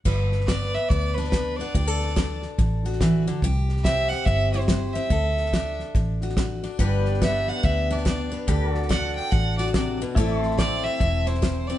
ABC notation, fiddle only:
X:1
M:4/4
L:1/8
Q:"Swing" 1/4=142
K:G
V:1 name="Fiddle"
z2 d e d B B d- | d3 z4 z | z2 e f e c c e- | e3 z4 z |
z2 e f e d d z | z2 f g f d d z | z2 d e2 c2 d |]